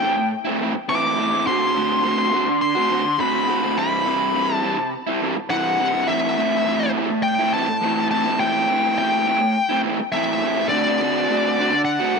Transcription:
Already playing: A2 G5
0.02 E3 A3 C4 E4
0.17 muted overdriven electric guitar stroke
0.45 A3 C4 E4
0.59 E3 A3 C4 E4
0.74 muted overdriven electric guitar stroke
0.88 A2 E3 A3 C4 E4 D6
1.17 E3 A3 C4 E4
1.32 A3 C4 E4
1.46 D3 A3 C4 F#4 C6
1.75 D3 A3 C4 F#4
2.03 D3 A3 C4 F#4
2.32 D3 A3 C4 F#4
2.47 muted overdriven electric guitar stroke
2.61 C6
2.76 A3 C4 F#4
2.90 D3 A3 C4 F#4
3.05 muted overdriven electric guitar stroke
3.19 D3 A3 C4 F#4 B5
3.48 D3 A3 C4 F#4
3.62 A3 C4 F#4
3.77 C3 E3 G3 C4 E4 B5
4.05 E3 G3 C4 E4
4.34 C3 E3 G3 C4 E4
4.55 A5
4.63 E3 G3 C4 E4
4.78 muted overdriven electric guitar stroke
5.07 G3 C4 E4
5.21 E3 G3 C4 E4
5.37 muted overdriven electric guitar stroke
5.50 C3 E3 G3 C4 E4 F#5
5.79 E3 G3 C4 E4
5.93 G3 C4 E4
6.08 A2 E3 A3 C4 E4 E5
6.37 E3 A3 C4 E4
6.66 A2 E3 A3 C4 E4
6.95 E3 A3 C4 E4
7.10 muted overdriven electric guitar stroke
7.23 G5
7.39 A3 C4 E4
7.53 E3 A3 C4 E4 A5
7.68 muted overdriven electric guitar stroke
7.81 A2 E3 A3 C4 E4
8.10 E3 A3 C4 E4 A5
8.25 A3 C4 E4
8.39 A2 E3 A3 C4 E4 G5
8.68 E3 A3 C4 E4
8.96 A2 E3 A3 C4 E4 G5
9.25 E3 A3 C4 E4
9.41 muted overdriven electric guitar stroke
9.69 A3 C4 E4
9.84 E3 A3 C4 E4
10.00 muted overdriven electric guitar stroke
10.12 A2 E3 A3 C4 E5
10.16 E4
10.42 E3 A3 C4 E4
10.57 A3 C4 E4
10.69 D3 A3 D5
10.73 C4 F#4
11.00 D3 A3 C4 F#4
11.29 D3 A3 C4 F#4
11.58 D3 A3 C4 F#4
11.73 muted overdriven electric guitar stroke
11.85 F#5
12.00 A3 C4 F#4
12.15 D3 A3

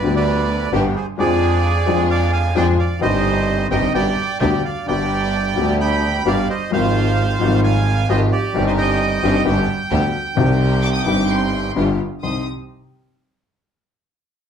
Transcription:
Already playing: B4 D5
0.02 D2 D3 G3 B3 D4 G4
0.16 B4 D5
0.72 G1 G2 D3 G3 B3 D4 G4 B4
0.96 G#4 C5
1.18 F2 F3 G#3 D4 F4 G#4 D5
1.86 F2 F3 G#3 D4 F4 G#4
2.10 D5 F5
2.32 F5 G#5
2.55 F2 F3 G#3 D4 F4 G#4 D5 G5
2.79 D5 F5
2.99 G1 G2 D#3 G3 C4 D#4 G4 C5 D#5
3.03 G4
3.70 G1 G2 D#3 G3 C4 D#4 G4 D#5 G5
3.93 G1 G2 D3 G3 B3 D4 G4 D5 G5
4.40 D2 D3 G3 B3 D4 G4 D5 G5
4.65 D5 F5
4.86 G1 G2 D3 G3 B3 D4 G4 D5 G5
5.56 D2 D3 G3 B3 D4 G4
5.81 G5 B5
6.25 G1 G2 D3 G3 B3 D4 G4 D5 F5
6.50 C5 D#5
6.70 G#1 G#2 F3 G#3 C4 F4 G4 C5 F5
7.38 G#1 G#2 F3 G3 G#3 C4 F4
7.42 G3
7.64 F5 G#5
8.09 G#1 G#2 F3 G#3 C4 F4 G4 C5 D#5
8.32 G4 D5
8.53 G1 G2 D#3 G3 C4 D#4 G4
8.57 G4
8.67 C5 D#5
8.78 D#5 G5
9.23 G1 G2 D#3 G3 C4 D#4 G4
9.45 G1 G2 D3 G3 B3 D4 G4
9.91 D2 D3 G3 B3 D4 G4
10.35 C2 C3 D#3 G3 C4 D#4 G4
10.39 G4
10.83 D6
10.94 D#6
11.04 G1 G2 D#3 G3 C4 D#4 G4 D6
11.28 C6
11.76 G1 G2 D3 G3 B3 F4 G4
12.23 C2 G3 C4 D#4 G4 C6 D#6

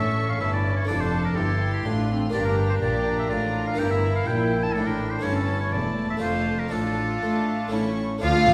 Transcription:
Already playing: A1 A2 A3 C#4 A4 E5 C#6
0.30 F5
0.40 G1 G2 E4 E5 A5
0.53 D5
0.77 C#5
0.85 A3 D4 A4 D5
0.89 F1 F2 D4 A4 A5
1.01 C5
1.25 A#4
1.36 G1 G2 E4 G4 A4 C6
1.73 G4
1.85 A1 A2 D4 F4
2.11 C4
2.30 A#3 D4 G4 D5
2.34 G1 G2 D4 G4 A#5
2.45 A#4
2.70 C5
2.82 A#1 A#2 G4 D5 A#5
3.19 E5
3.30 A1 A2 F4 D5
3.67 F5
3.74 A#3 E4 G4
3.78 G1 G2 E4 G5
3.91 E5
4.16 F5
4.26 A#1 A#2 E4 G5
4.64 A5
4.74 A1 A2 D4 E4 A4 G5
4.87 A#4
5.11 C5
5.19 A3 C#4 E4
5.23 G1 G2 C#4 E4 C#5 A5
5.36 A4
5.61 C#5
5.72 E1 E2 A3 D5 A5
6.10 E5
6.17 A3 D4 F4
6.22 F1 F2 F4 C5
6.59 A#4
6.68 A1 A2 A3 D4 F4 A4
6.72 A2 D4 F4 A5
7.23 A2 A3
7.68 A2 A3 C#4 E4
7.73 A1 A2 C#4 E4 C#6
8.18 D2 D3 F3 A3 D4 F4
8.22 D3 F4 F5
8.35 A3
8.46 D2 D3 F3

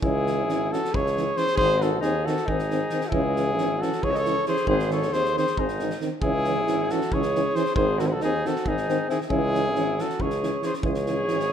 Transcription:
0.02 C#2 E3 C#4 E4 G#4, kick
0.27 E3 C#4, snare
0.47 G#1 E3 C#4, snare
0.72 E3 C#4 F#4 A4, snare
0.85 snare
0.92 C#2 E3 C#4 G#4 C#5, kick
1.06 snare
1.16 E3 C#4, snare
1.35 E3 C#4 G#4 C5, snare
1.47 snare
1.55 G#1 D#3 C4 G#4 C5, kick
1.77 F#4, snare
1.82 D#3 C4 A4
2.00 D#2 D#3 C4 D#4 G#4, snare
2.25 D#3 C4 F#4 A4, snare
2.37 snare
2.46 G#1 D#3 D#4 G#4, kick
2.50 C4
2.59 snare
2.71 D#3 C4, snare
2.90 D#3 C4, snare
3.01 snare
3.05 E4 F#4 A4
3.11 C#2 E3 C#4 G#4, kick
3.36 E3 C#4, snare
3.57 G#1 E3 C#4, snare
3.79 E3 C#4 F#4 A4, snare
3.93 snare
4.02 C#2 E3 C#4 G#4 C#5, kick
4.11 C5 D#5, snare
4.16 A4 C#5
4.25 E3 C#4, snare
4.46 E3 C#4 G#4 C5, snare
4.56 snare
4.66 G#1 D#3 C4 G#4 C5, kick
4.80 snare
4.90 D#3 C4 A4 C#5, snare
5.02 snare
5.12 D#2 D#3 C4 G#4 C5, snare
5.25 snare
5.36 D#3 C4 G#4 C5, snare
5.47 snare
5.57 G#1 D#3 C4 D#4 G#4, kick
5.68 snare
5.79 D#3 C4, snare
5.90 snare
6.01 D#3 C4, snare
6.22 C#2 E3 C#4 E4 G#4, kick
6.45 E3 C#4, snare
6.66 G#1 E3 C#4, snare
6.90 E3 C#4 F#4 A4, snare
7.01 snare
7.12 C#2 E3 C#4 G#4 C#5, kick
7.23 snare
7.34 E3 C#4, snare
7.55 E3 C#4 G#4 C5, snare
7.66 snare
7.75 G#1 D#3 C4 G#4 C5, kick
7.98 D#3 F#4 A4, snare
8.03 C4 G#4
8.08 F#4 C5
8.12 A4
8.21 D#2 D#3 C4 D#4 G#4, snare
8.44 D#3 C4 F#4 A4, snare
8.56 snare
8.65 G#1 D#3 C4 D#4 G#4, kick
8.77 snare
8.88 D#3 C4, snare
9.08 D#3 C4 E4 G#4, snare
9.21 snare
9.29 C#2 E3 C#4 E4 G#4, kick
9.53 E3 C#4, snare
9.75 G#1 E3 C#4, snare
9.98 E3 C#4 F#4 A4, snare
10.10 snare
10.18 C#2 E3 C#4 G#4 C#5, kick
10.30 snare
10.41 E3 C#4, snare
10.62 E3 C#4 G#4, snare
10.66 C5
10.74 snare
10.83 C#2 E3 C#4 G#4, kick
10.87 C#5
10.95 snare
11.06 E3 C#4, snare
11.28 G#1 E3 C#4, snare
11.40 snare

